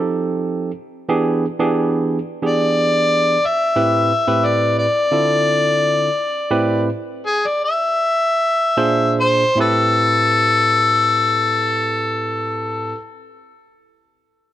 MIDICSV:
0, 0, Header, 1, 3, 480
1, 0, Start_track
1, 0, Key_signature, 0, "minor"
1, 0, Tempo, 667408
1, 798, Time_signature, 4, 2, 24, 8
1, 3680, Tempo, 705882
1, 5120, Tempo, 764331
1, 6080, Tempo, 814111
1, 6560, Tempo, 833333
1, 9413, End_track
2, 0, Start_track
2, 0, Title_t, "Harmonica"
2, 0, Program_c, 0, 22
2, 1768, Note_on_c, 0, 74, 104
2, 2489, Note_on_c, 0, 76, 90
2, 2500, Note_off_c, 0, 74, 0
2, 3207, Note_on_c, 0, 74, 84
2, 3218, Note_off_c, 0, 76, 0
2, 3436, Note_off_c, 0, 74, 0
2, 3444, Note_on_c, 0, 74, 103
2, 4849, Note_off_c, 0, 74, 0
2, 5138, Note_on_c, 0, 68, 86
2, 5266, Note_on_c, 0, 74, 74
2, 5276, Note_off_c, 0, 68, 0
2, 5357, Note_off_c, 0, 74, 0
2, 5378, Note_on_c, 0, 76, 101
2, 6305, Note_off_c, 0, 76, 0
2, 6338, Note_on_c, 0, 72, 100
2, 6564, Note_off_c, 0, 72, 0
2, 6578, Note_on_c, 0, 69, 116
2, 8518, Note_off_c, 0, 69, 0
2, 9413, End_track
3, 0, Start_track
3, 0, Title_t, "Tine electric piano"
3, 0, Program_c, 1, 4
3, 0, Note_on_c, 1, 53, 75
3, 0, Note_on_c, 1, 60, 73
3, 0, Note_on_c, 1, 63, 70
3, 0, Note_on_c, 1, 67, 77
3, 0, Note_on_c, 1, 69, 92
3, 508, Note_off_c, 1, 60, 0
3, 508, Note_off_c, 1, 63, 0
3, 508, Note_off_c, 1, 67, 0
3, 508, Note_off_c, 1, 69, 0
3, 509, Note_off_c, 1, 53, 0
3, 781, Note_on_c, 1, 52, 86
3, 782, Note_on_c, 1, 59, 82
3, 785, Note_on_c, 1, 67, 77
3, 787, Note_on_c, 1, 68, 94
3, 788, Note_on_c, 1, 62, 75
3, 1040, Note_off_c, 1, 52, 0
3, 1040, Note_off_c, 1, 59, 0
3, 1041, Note_off_c, 1, 67, 0
3, 1043, Note_off_c, 1, 62, 0
3, 1043, Note_off_c, 1, 68, 0
3, 1148, Note_on_c, 1, 52, 91
3, 1148, Note_on_c, 1, 59, 83
3, 1148, Note_on_c, 1, 62, 82
3, 1152, Note_on_c, 1, 68, 94
3, 1153, Note_on_c, 1, 67, 79
3, 1567, Note_off_c, 1, 62, 0
3, 1568, Note_off_c, 1, 52, 0
3, 1568, Note_off_c, 1, 59, 0
3, 1570, Note_off_c, 1, 67, 0
3, 1570, Note_off_c, 1, 68, 0
3, 1743, Note_on_c, 1, 52, 63
3, 1743, Note_on_c, 1, 62, 61
3, 1745, Note_on_c, 1, 67, 61
3, 1746, Note_on_c, 1, 59, 65
3, 1748, Note_on_c, 1, 68, 75
3, 2419, Note_off_c, 1, 52, 0
3, 2419, Note_off_c, 1, 62, 0
3, 2420, Note_off_c, 1, 59, 0
3, 2420, Note_off_c, 1, 67, 0
3, 2422, Note_off_c, 1, 68, 0
3, 2703, Note_on_c, 1, 45, 73
3, 2703, Note_on_c, 1, 64, 67
3, 2704, Note_on_c, 1, 60, 65
3, 2707, Note_on_c, 1, 67, 69
3, 2707, Note_on_c, 1, 71, 79
3, 2959, Note_off_c, 1, 45, 0
3, 2959, Note_off_c, 1, 64, 0
3, 2960, Note_off_c, 1, 60, 0
3, 2961, Note_off_c, 1, 71, 0
3, 2962, Note_off_c, 1, 67, 0
3, 3073, Note_on_c, 1, 45, 78
3, 3074, Note_on_c, 1, 60, 68
3, 3075, Note_on_c, 1, 64, 68
3, 3077, Note_on_c, 1, 71, 83
3, 3078, Note_on_c, 1, 67, 70
3, 3493, Note_off_c, 1, 45, 0
3, 3494, Note_off_c, 1, 60, 0
3, 3494, Note_off_c, 1, 64, 0
3, 3495, Note_off_c, 1, 71, 0
3, 3496, Note_off_c, 1, 67, 0
3, 3678, Note_on_c, 1, 50, 63
3, 3679, Note_on_c, 1, 60, 58
3, 3681, Note_on_c, 1, 64, 61
3, 3684, Note_on_c, 1, 65, 63
3, 3685, Note_on_c, 1, 69, 74
3, 4337, Note_off_c, 1, 50, 0
3, 4337, Note_off_c, 1, 60, 0
3, 4338, Note_off_c, 1, 64, 0
3, 4340, Note_off_c, 1, 65, 0
3, 4340, Note_off_c, 1, 69, 0
3, 4626, Note_on_c, 1, 64, 76
3, 4627, Note_on_c, 1, 60, 81
3, 4627, Note_on_c, 1, 67, 76
3, 4628, Note_on_c, 1, 45, 86
3, 4628, Note_on_c, 1, 71, 92
3, 4883, Note_off_c, 1, 45, 0
3, 4883, Note_off_c, 1, 60, 0
3, 4883, Note_off_c, 1, 64, 0
3, 4883, Note_off_c, 1, 67, 0
3, 4884, Note_off_c, 1, 71, 0
3, 6085, Note_on_c, 1, 46, 91
3, 6086, Note_on_c, 1, 62, 83
3, 6086, Note_on_c, 1, 68, 81
3, 6087, Note_on_c, 1, 65, 82
3, 6087, Note_on_c, 1, 72, 99
3, 6474, Note_off_c, 1, 46, 0
3, 6474, Note_off_c, 1, 62, 0
3, 6474, Note_off_c, 1, 68, 0
3, 6475, Note_off_c, 1, 65, 0
3, 6475, Note_off_c, 1, 72, 0
3, 6547, Note_on_c, 1, 45, 80
3, 6553, Note_on_c, 1, 60, 70
3, 6560, Note_on_c, 1, 64, 72
3, 6569, Note_on_c, 1, 67, 74
3, 6575, Note_on_c, 1, 71, 81
3, 8488, Note_off_c, 1, 45, 0
3, 8494, Note_off_c, 1, 60, 0
3, 8500, Note_off_c, 1, 64, 0
3, 8509, Note_off_c, 1, 67, 0
3, 8515, Note_off_c, 1, 71, 0
3, 9413, End_track
0, 0, End_of_file